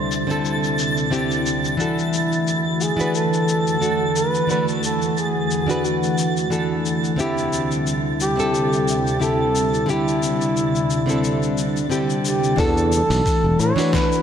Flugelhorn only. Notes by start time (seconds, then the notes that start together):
1.81 E4
2.82 G#4
3.15 A4
4.17 B4
4.51 B4
4.85 A4
5.19 G#4
5.85 F#4
7.19 E4
8.21 G4
9.22 A4
9.90 E4
12.25 G4
12.59 A4
13.60 C#5
13.94 B4